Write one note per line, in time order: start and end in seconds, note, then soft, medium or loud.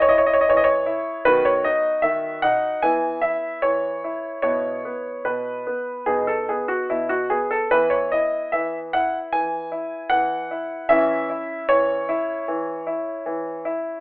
0.00 1.23 C#4 soft
0.00 0.10 C#5 medium
0.08 0.47 E4 medium
0.08 0.18 D#5 medium
0.18 0.26 C#5 medium
0.26 0.35 D#5 medium
0.34 0.42 C#5 medium
0.41 0.50 D#5 medium
0.49 0.87 E3 medium
0.49 0.58 C#5 medium
0.57 0.66 D#5 medium
0.64 1.23 C#5 medium
0.86 1.25 E4 medium
1.25 1.64 D#3 medium
1.25 2.78 B3 soft
1.25 2.78 F#4 soft
1.25 1.46 B4 loud
1.45 1.65 C#5 medium
1.64 2.03 D#4 soft
1.64 2.00 D#5 medium
2.02 2.42 D#3 medium
2.02 2.38 E5 medium
2.42 2.82 D#4 medium
2.42 2.82 F#5 medium
2.82 3.22 E3 medium
2.82 4.40 B3 soft
2.82 3.21 E4 soft
2.82 3.23 G#5 medium
3.21 3.62 E4 soft
3.21 3.63 E5 medium
3.62 4.02 E3 soft
3.62 4.41 C#5 medium
4.04 4.42 E4 medium
4.42 4.83 B2 medium
4.42 4.84 B3 soft
4.42 6.04 E4 soft
4.42 5.21 C#5 medium
4.85 5.25 B3 soft
5.25 5.66 B2 soft
5.25 6.04 B4 medium
5.67 6.06 B3 medium
6.06 6.47 B2 medium
6.06 6.48 B3 soft
6.06 7.67 D#4 soft
6.06 6.28 G#4 medium
6.27 6.48 A4 medium
6.49 6.89 B3 soft
6.49 6.69 G#4 medium
6.68 6.89 F#4 medium
6.90 7.30 B2 soft
6.90 7.10 E4 medium
7.09 7.30 F#4 medium
7.30 7.69 B3 soft
7.30 7.51 G#4 medium
7.51 7.71 A4 medium
7.71 8.11 E3 medium
7.71 10.87 B3 soft
7.71 8.11 E4 soft
7.71 7.92 B4 medium
7.90 8.11 C#5 medium
8.12 8.51 E4 soft
8.12 8.52 D#5 medium
8.52 8.92 E3 medium
8.52 8.76 E5 medium
8.93 9.32 E4 medium
8.93 9.17 F#5 medium
9.33 9.71 E3 medium
9.33 10.07 G#5 medium
9.72 10.10 E4 medium
10.10 10.49 E3 medium
10.10 10.86 F#5 medium
10.51 10.88 E4 medium
10.89 11.29 E3 medium
10.89 13.99 C#4 medium
10.89 11.28 E4 medium
10.89 11.65 E5 loud
11.30 11.68 E4 medium
11.69 12.08 E3 medium
11.69 13.99 C#5 loud
12.09 12.47 E4 medium
12.48 12.86 E3 medium
12.87 13.25 E4 medium
13.26 13.64 E3 medium
13.65 14.00 E4 medium